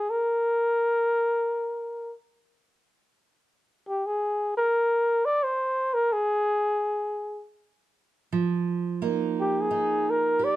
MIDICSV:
0, 0, Header, 1, 3, 480
1, 0, Start_track
1, 0, Tempo, 500000
1, 10140, End_track
2, 0, Start_track
2, 0, Title_t, "Flugelhorn"
2, 0, Program_c, 0, 56
2, 0, Note_on_c, 0, 68, 65
2, 96, Note_on_c, 0, 70, 67
2, 110, Note_off_c, 0, 68, 0
2, 2058, Note_off_c, 0, 70, 0
2, 3728, Note_on_c, 0, 67, 58
2, 3896, Note_on_c, 0, 68, 60
2, 3910, Note_off_c, 0, 67, 0
2, 4372, Note_off_c, 0, 68, 0
2, 4387, Note_on_c, 0, 70, 75
2, 5042, Note_on_c, 0, 74, 78
2, 5056, Note_off_c, 0, 70, 0
2, 5218, Note_on_c, 0, 72, 70
2, 5232, Note_off_c, 0, 74, 0
2, 5700, Note_on_c, 0, 70, 67
2, 5715, Note_off_c, 0, 72, 0
2, 5879, Note_on_c, 0, 68, 71
2, 5893, Note_off_c, 0, 70, 0
2, 7184, Note_off_c, 0, 68, 0
2, 9027, Note_on_c, 0, 67, 65
2, 9225, Note_on_c, 0, 68, 73
2, 9239, Note_off_c, 0, 67, 0
2, 9697, Note_on_c, 0, 70, 73
2, 9712, Note_off_c, 0, 68, 0
2, 10024, Note_on_c, 0, 74, 79
2, 10038, Note_off_c, 0, 70, 0
2, 10140, Note_off_c, 0, 74, 0
2, 10140, End_track
3, 0, Start_track
3, 0, Title_t, "Steel-string acoustic guitar"
3, 0, Program_c, 1, 25
3, 7992, Note_on_c, 1, 53, 63
3, 8657, Note_on_c, 1, 58, 50
3, 8663, Note_on_c, 1, 63, 51
3, 9314, Note_off_c, 1, 63, 0
3, 9318, Note_on_c, 1, 63, 49
3, 9977, Note_on_c, 1, 67, 51
3, 10140, Note_off_c, 1, 53, 0
3, 10140, Note_off_c, 1, 58, 0
3, 10140, Note_off_c, 1, 63, 0
3, 10140, Note_off_c, 1, 67, 0
3, 10140, End_track
0, 0, End_of_file